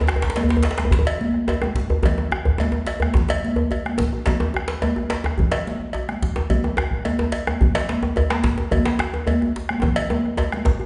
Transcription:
0.01 djembe bass
0.08 bombo rim, djembe slap, djembe tone
0.16 djembe bass
0.21 bombo low, djembe slap
0.30 djembe slap
0.36 cowbell, djembe slap, high conga
0.44 djembe bass
0.49 bombo rim, djembe slap, djembe tone, high conga
0.57 djembe bass
0.63 cowbell, djembe slap
0.71 djembe slap
0.78 bombo rim, djembe slap, high conga
0.85 djembe bass
0.91 bombo low, djembe slap, high conga, djembe bass, low conga
0.99 djembe bass
1.05 cowbell, djembe tone
1.21 high conga
1.34 bombo rim
1.47 bombo rim, cowbell, djembe tone
1.62 bombo rim, djembe tone, high conga
1.75 bombo low, djembe slap, high conga
1.90 bombo rim, djembe tone, djembe bass
2.03 bombo rim, cowbell, djembe tone, high conga, djembe bass, low conga
2.18 bombo rim, djembe tone
2.32 bombo rim, djembe tone
2.45 bombo rim, bombo low, djembe bass
2.58 cowbell, djembe tone, high conga
2.72 djembe tone
2.73 djembe tone
2.87 bombo rim, cowbell, djembe slap
3.00 bombo rim, high conga, djembe bass
3.14 bombo low, djembe tone, djembe bass, low conga
3.29 bombo rim, cowbell, djembe tone
3.43 djembe slap, high conga
3.56 djembe slap, high conga, djembe bass
3.71 cowbell, djembe tone
3.86 bombo rim, high conga
3.98 bombo low, djembe slap, djembe tone
4.13 djembe tone
4.26 cowbell, djembe slap, high conga, djembe bass, low conga
4.40 bombo rim, djembe tone
4.54 bombo rim, djembe tone
4.68 djembe slap
4.82 cowbell, djembe tone, high conga
4.96 bombo rim, djembe slap, djembe tone, high conga
5.10 cowbell, djembe slap
5.24 bombo rim, djembe tone
5.38 bombo low, djembe bass, low conga
5.51 bombo rim, cowbell, djembe slap, djembe tone
5.66 bombo rim, djembe slap, high conga
5.81 djembe slap, high conga
5.93 cowbell, djembe tone
6.09 bombo rim, high conga
6.22 bombo low, djembe slap
6.36 djembe tone
6.50 cowbell, high conga, djembe bass, low conga
6.64 bombo rim, djembe tone
6.77 bombo rim, djembe tone
6.91 bombo low, djembe slap
7.05 cowbell, high conga, djembe tone
7.19 bombo rim, djembe slap, djembe tone, high conga
7.32 cowbell, djembe slap
7.47 bombo rim, djembe tone, high conga
7.61 bombo low, djembe bass, low conga
7.75 bombo rim, cowbell, djembe slap, djembe tone
7.89 bombo rim, djembe slap, high conga
8.03 djembe slap, djembe tone, high conga
8.16 cowbell, djembe tone, djembe bass
8.30 bombo rim, djembe slap, high conga
8.44 bombo low, djembe slap
8.58 djembe tone
8.71 cowbell, high conga, djembe bass, low conga
8.73 djembe bass
8.85 djembe slap
8.99 bombo rim, djembe slap, djembe tone
9.14 djembe slap, djembe tone
9.27 cowbell, high conga, djembe bass
9.41 bombo rim, djembe slap, high conga, djembe tone
9.56 djembe slap
9.69 bombo rim, high conga
9.82 bombo rim, bombo low, djembe slap, djembe tone, low conga, djembe bass
9.96 cowbell, djembe tone
10.10 bombo rim, djembe tone, high conga
10.25 bombo rim, djembe slap, high conga
10.37 cowbell, djembe slap, djembe tone
10.52 bombo rim, high conga
10.65 bombo rim, bombo low, djembe slap, djembe tone
10.79 bombo rim, djembe slap, djembe tone

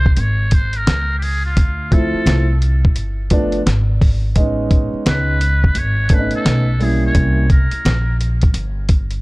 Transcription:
Already playing: C2 C5
0.06 kick
0.14 G#1 C5, closed hi-hat
0.20 C#5
0.51 C5, kick, closed hi-hat
0.73 A#4, closed hi-hat
0.87 C#2, snare, closed hi-hat
1.19 G4, open hi-hat
1.23 G#4
1.46 F4
1.57 D2, kick, closed hi-hat
1.91 F3 A3 C4 E4 A4, kick, closed hi-hat
2.14 muted upright bass stroke
2.26 C2, snare, closed hi-hat
2.62 closed hi-hat
2.85 kick
2.96 G1, closed hi-hat
3.30 F3 A3 B3 D4, kick, closed hi-hat
3.52 closed hi-hat
3.66 G#1, snare, closed hi-hat
4.01 kick, open hi-hat
4.35 A1 G#3 B3 C#4 D#4, kick, closed hi-hat
4.71 kick, closed hi-hat
4.93 muted upright bass stroke
5.06 C#2 B4, snare, closed hi-hat
5.41 closed hi-hat
5.64 kick
5.75 G#1 C#5, closed hi-hat
6.09 A3 B3 C#4 D4, kick, closed hi-hat
6.14 B4
6.19 D#4
6.31 muted upright bass stroke, closed hi-hat
6.35 A4
6.45 B1, snare, closed hi-hat
6.79 G3 A#3 C#4 E4 G#4, open hi-hat
7.06 C#5
7.14 C2 G3 A#3 C#4 E4, kick, closed hi-hat
7.50 A#4, kick, closed hi-hat
7.71 muted upright bass stroke, closed hi-hat
7.85 A#1, snare, closed hi-hat
8.21 closed hi-hat
8.42 kick, closed hi-hat
8.54 G1, closed hi-hat
8.89 kick, closed hi-hat
9.11 closed hi-hat

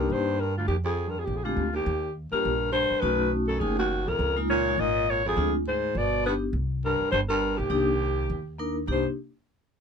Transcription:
Already playing: G2 A#3 D4 D#4 G4 A#4
0.10 G2 C5
0.40 G2 A#4
0.57 D2 F4
0.67 D#2 F2 G4
0.84 F2 G#4
1.08 G2 A#4
1.19 F2 G#4
1.24 A#1 D#2 G4
1.34 F2 G#4
1.43 D2 G#3 C4 D4 F4 G4
1.56 D2
1.73 D#2 G4
1.86 D#2
2.31 G2 A#3 D4 F4 G4 A#4, muted upright bass stroke
2.45 A#1
2.71 G2 C5
2.91 muted upright bass stroke
3.00 B1 F#2 A3 C#4 D#4 F#4 B4
3.48 F#2 A4
3.59 F#1 D#2 A3 C#4 D#4 F4 G#4
3.78 D#2 F#4
4.06 C2 F2 A#4
4.19 C#2
4.36 G#3 A#3 D#4 F4
4.50 A#2 C#5
4.67 G#3 A#3 D#4 F4
4.78 G#1 A#2 D#5
5.08 A#2 C#5
5.25 F2 G#4
5.36 D2 G#3 C4 D4 F4
5.67 G#2 C5
5.95 G1 B2 D5
6.24 B3 D4 D#4 G4 B4
6.28 G2
6.53 C2
6.85 G2 A#4
7.01 muted upright bass stroke
7.11 G1 G2 C5
7.28 G2 A#4
7.57 B1 D#2 G4
7.70 C2 A#3 D4 D#4 G4
8.30 D#2
8.58 A#3 D4 D#4 A#4
8.87 C2 G2 A#3 D4 D#4 G4 C5

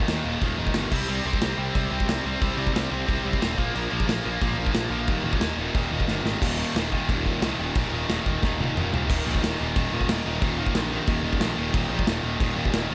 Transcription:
0.08 D#2 A#2 D#3, snare, crash
0.25 D#1 D#2 A#2 D#3
0.41 D#1 D#2 A#2 D#3, kick, crash
0.58 D#1 D#2 A#2 D#3
0.67 kick
0.74 G1 D#2 A#2 D#3, snare, crash
0.92 C2 C3 G3 C4, kick, crash
1.09 C2 C3 G3 C4, crash
1.25 C2 C3 G3 C4
1.33 kick
1.42 C2 C3 G3 C4, snare, crash
1.57 C2 C3 G3 C4
1.75 C2 C3 G3 C4, kick, crash
1.91 C2 C3 G3 C4
2.00 kick
2.08 C2 C3 G3 C4, snare, crash
2.25 C2 C3 G3 C4
2.41 C2 C3 G3 C4, kick, crash
2.57 C2 C3 G3 C4
2.67 kick
2.73 C2 C3 G3 C4, snare, crash
2.91 C2 C3 G3 C4
3.07 C2 C3 G3 C4, kick, crash
3.24 C2 C3 G3 C4
3.33 kick
3.40 D#1 C3 G3 C4, snare, crash
3.57 A#1 A#2 F3 A#3, kick
3.75 A#1 A#2 F3 A#3, crash
3.90 A#1 A#2 F3 A#3
4.00 kick
4.07 A#1 A#2 F3 A#3, snare, crash
4.25 A#1 A#2 F3 A#3
4.42 A#1 A#2 F3 A#3, kick, crash
4.58 A#1 A#2 F3 A#3
4.66 kick
4.73 A#1 A#2 F3 A#3, snare, crash
4.89 A#1 A#2 F3 A#3
5.07 D#1 D#2 A#2 D#3, kick, crash
5.24 D#1 D#2 A#2 D#3
5.33 kick
5.40 D#2 A#2 D#3, snare, crash
5.56 D#1 D#2 A#2 D#3
5.74 D#1 D#2 A#2 D#3, kick, crash
5.91 D#1 D#2 A#2 D#3
6.00 kick
6.08 G1 D#2 A#2 D#3, snare
6.24 G#1 D#2 A#2 D#3, snare
6.42 D#1 D#2 A#2 D#3, kick, crash
6.58 D#2 A#2 D#3
6.75 D#1 D#2 A#2 D#3, snare, crash
6.92 D#2 A#2 D#3, kick
7.09 D#1 D#2 A#2 D#3, kick, crash
7.26 D#2 A#2 D#3, kick
7.41 C2 D#2 A#2 D#3, snare, crash
7.59 D#1 D#2 A#2 D#3
7.75 A#1 D#2 A#2 D#3, kick, crash
7.92 D#1 D#2 A#2 D#3
8.09 D#1 D#2 A#2 D#3, snare, crash
8.26 D#1 D#2 A#2 D#3, kick
8.43 D#1 D#2 A#2 D#3, kick, snare
8.58 D#1 D#2 A#2 D#3, high tom
8.75 D#1 D#2 A#2 D#3, mid tom
8.92 C2 D#2 A#2 D#3, floor tom
9.09 D#1 D#2 A#2 D#3, kick, crash
9.26 A#1 D#2 A#2 D#3
9.35 kick
9.42 D#1 D#2 A#2 D#3, snare, crash
9.59 D#1 D#2 A#2 D#3
9.75 D#1 D#2 A#2 D#3, kick, crash
9.92 D#1 D#2 A#2 D#3
10.01 kick
10.09 D#1 D#2 A#2 D#3, snare, crash
10.26 D#1 D#2 A#2 D#3
10.42 D#1 D#2 A#2 D#3, kick, crash
10.59 D#2 A#2 D#3
10.66 kick
10.75 A#1 D#2 A#2 D#3, snare, crash
10.91 D#2 A#2 D#3
11.07 D#1 D#2 A#2 D#3, kick, crash
11.23 D#1 D#2 A#2 D#3
11.33 kick
11.40 A#1 D#2 A#2 D#3, snare, crash
11.56 D#1 D#2 A#2 D#3
11.73 D#1 D#2 A#2 D#3, kick, crash
11.90 A#1 D#2 A#2 D#3
11.99 kick
12.06 D#1 D#2 A#2 D#3, snare, crash
12.23 D#1 D#2 A#2 D#3
12.39 D#1 D#2 A#2 D#3, kick, crash
12.56 D#1 D#2 A#2 D#3
12.65 kick
12.73 D#1 D#2 A#2 D#3, snare, crash
12.90 D#1 A#2 D#3

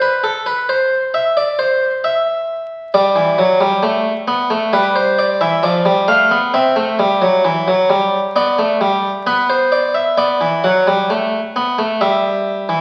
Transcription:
0.02 B4
0.24 A4
0.46 B4
0.69 C5
1.14 E5
1.37 D5
1.59 C5
2.04 E5
2.94 G3 D5
3.16 E3
3.38 F#3
3.61 G3
3.83 A3
4.28 B3
4.50 A3
4.73 G3 B4
4.96 C5
5.19 D5
5.41 E3 E5
5.63 F3 D5
5.85 G3
6.08 A3 F5
6.31 B3
6.54 C4 E5
6.76 A3
6.99 G3
7.22 F#3
7.45 E3
7.68 F#3
7.90 G3
8.36 B3 D5
8.59 A3
8.81 G3
9.27 B3 B4
9.50 C5
9.72 D5
9.94 E5
10.18 B3 D5
10.41 E3
10.64 F#3 F#5
10.87 G3
11.10 A3
11.56 B3
11.79 A3
12.01 G3 E5
12.69 E3

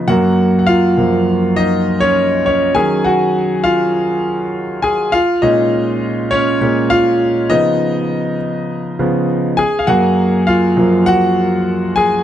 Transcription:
Already playing: C#3 F3 B3 D#4 D#5
0.08 F#2 F#3 A#3 F#4 F#5
0.59 F#5
0.67 F4 F5
0.98 F#2 F3 A#3
1.56 D#4 D#5
2.00 C#4 C#5
2.46 C#4 C#5
2.75 D#3 F#3 C#4 G#4 G#5
3.04 F#4 F#5
3.64 F4 F5
4.82 G#4 G#5
5.12 F4 F5
5.42 A#2 G#3 C#4 D#4 D#5
6.31 C#4 C#5
6.61 A#2 G#3 C#4
6.90 F4 F5
7.50 C#3 F3 B3 D#4 D#5
8.99 C#3 F3 B3
9.57 G#4 G#5
9.79 F5
9.87 F#2 F#3 A#3 F#4 F#5
10.47 F4 F5
10.77 F#2 F3 A#3
11.06 F#4 F#5
11.96 G#4 G#5

